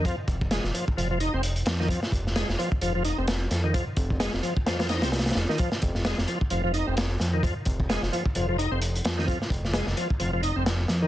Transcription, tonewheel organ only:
X:1
M:4/4
L:1/16
Q:"Swing 16ths" 1/4=130
K:Fm
V:1 name="Tonewheel organ" clef=bass
F, z3 A, z F, z F, F, E C z3 E, | F, z3 A, z F, z F, F, E C z3 E, | F, z3 A, z F, z F, F, E C z3 E, | F, z3 A, z F, z F, F, E C z3 E, |
F, z3 A, z F, z F, F, E C z3 E, | F, z3 A, z F, z F, F, E C z3 E, |]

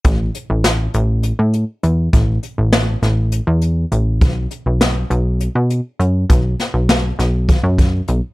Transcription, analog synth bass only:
X:1
M:7/8
L:1/16
Q:1/4=101
K:Bdor
V:1 name="Analog synth bass" clef=bass
A,,,2 z A,,,3 A,,,3 A,,2 z E,,2 | A,,,2 z A,,,3 A,,,3 E,,3 A,,,2 | B,,,2 z B,,,3 B,,,3 B,,2 z F,,2 | B,,,2 z B,,,3 B,,,3 F,,3 B,,, z |]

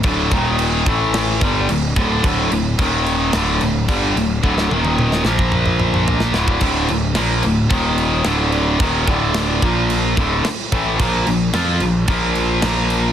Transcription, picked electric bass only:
X:1
M:4/4
L:1/8
Q:1/4=110
K:Dphr
V:1 name="Picked electric bass" clef=bass
D,,, E,,,2 A,,,2 G,,, D,,, D,,, | D,,, D,,, E,,,2 D,,, D,,, G,,, D,,, | D,,, E,,,2 B,,,4 D,,, | D,,, D,,, B,,, D,,, E,,,2 D,,,2 |
E,,, D,,,2 B,,,2 D,,, z A,,, | B,,, B,,, F,, B,,, B,,,2 B,,,2 |]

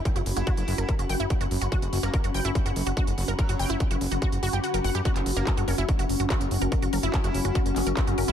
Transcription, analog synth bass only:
X:1
M:4/4
L:1/16
Q:1/4=144
K:F#
V:1 name="Analog synth bass" clef=bass
z F,,, F,,, F,,, z F,,, F,,, F,,, z F,,, F,,, F,,, z F,,, F,,, F,,, | z F,,, F,,, F,,, z F,,, F,,, F,,, z F,,, F,,, F,,, z F,,, F,,, F,,, | z F,,, F,,, F,,, z F,,, F,,, F,,, z F,,, F,,, F,,, z F,,, F,,, F,, | z F,,, F,,, F,,, z F,,, F,,, F,,, z F,,, F,,, F,,, z F,,, F,,, F,,, |
z F,,, F,,, F,,, z F,,, F,,, F,,, z F,,, F,,, F,,, z F,,, F,,, F,,, |]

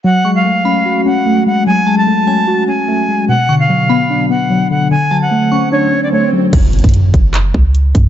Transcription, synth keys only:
X:1
M:4/4
L:1/8
Q:1/4=148
K:F#m
V:1 name="Synth keys"
F, G, A, C F C A, G, | F, G, A, C F C A, G, | B,, D, F, B, D B, F, D, | D, F, A, C D C A, F, |
z8 |]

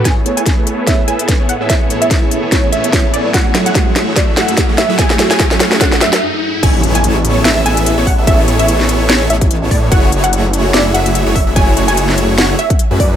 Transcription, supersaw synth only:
X:1
M:4/4
L:1/16
Q:"Swing 16ths" 1/4=146
K:A
V:1 name="Supersaw synth"
[B,EGAc]2 [B,EGAc]6 [B,EGAe]2 [B,EGAe]3 [B,EGAc] z [B,EGAe] | [B,EGAc]2 [B,EGAc]8 [B,EGAc]4 [B,EGAc]2 | [A,EFGc]2 [A,EFGc]6 [A,EFGe]2 [A,EFGe]3 [A,EFGc] z [A,EFGe] | [A,EFGc]2 [A,EFGc]8 z6 |
[B,EGAc]2 [B,EGAc]6 [B,EGAe]2 [B,EGAe]3 [B,EGAc] z [B,EGAe] | [B,EGAc]2 [B,EGAc]8 [B,EGAc]4 [B,EGAc]2 | [A,EFGc]2 [A,EFGc]6 [A,EFGe]2 [A,EFGe]3 [A,EFGc] z [A,EFGe] | [A,EFGc]2 [A,EFGc]8 z3 [A,EFGB]3 |]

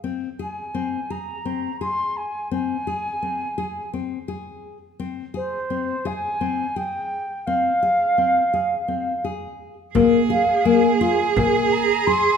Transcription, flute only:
X:1
M:7/8
L:1/8
Q:1/4=85
K:Ab
V:1 name="Flute"
z a2 b2 c' a | a4 z3 | z c2 a2 g2 | f4- f z2 |
z f a a a b c' |]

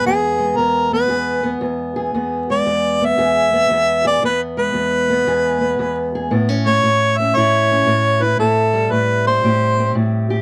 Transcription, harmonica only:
X:1
M:4/4
L:1/8
Q:"Swing" 1/4=115
K:Emix
V:1 name="Harmonica"
G2 ^A B3 z2 | z d2 e4 d | B B6 z | z c2 e c3 B |
A2 B =c3 z2 |]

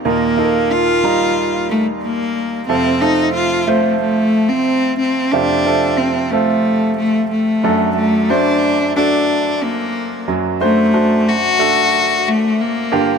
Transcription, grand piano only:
X:1
M:4/4
L:1/8
Q:1/4=91
K:Dphr
V:1 name="Grand piano"
[B,EFB] [B,EFAB]2 [G,EFb]3 z2 | [A,CFA] [A,CFA]2 [A,CFc]3 z2 | [A,CFG] [A,CFA]2 [A,CFA]3 z [A,D^FA]- | [A,D^FA] [A,DFc]2 [DFA]3 z2 |
[A,D^Fc] [A,DFc]2 [A,DFA]3 z [B,D=FG] |]
V:2 name="Grand piano" clef=bass
[E,,B,,]8 | [F,,C,]8 | [F,,C,]6- [F,,C,] [^F,,^F,]- | [^F,,^F,]6- [F,,F,] [F,,F,]- |
[^F,,^F,]6- [F,,F,] [G,,D,] |]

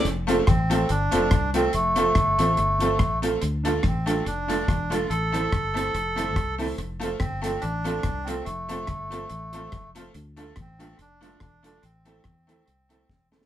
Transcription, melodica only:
X:1
M:4/4
L:1/8
Q:"Swing" 1/4=143
K:F
V:1 name="Melodica"
z2 C2 D3 C | A,6- A, z | z2 C2 D3 F | A6- A z |
z2 C C D3 C | A,6- A, z | z2 C2 D2 D D | C6- C z |]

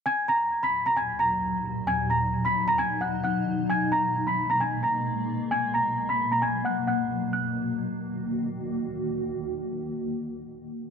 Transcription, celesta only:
X:1
M:4/4
L:1/16
Q:1/4=132
K:Ebm
V:1 name="Celesta"
[aa']2 [bb']3 [c'c'']2 [bb'] [aa']2 [bb']6 | [aa']2 [bb']3 [=b=b']2 [_b_b'] [aa']2 [^f^f']2 [ff']4 | [aa']2 [bb']3 [c'c'']2 [bb'] [aa']2 [bb']6 | [aa']2 [bb']3 [c'c'']2 [bb'] [aa']2 [gg']2 [gg']4 |
g'12 z4 | z16 |]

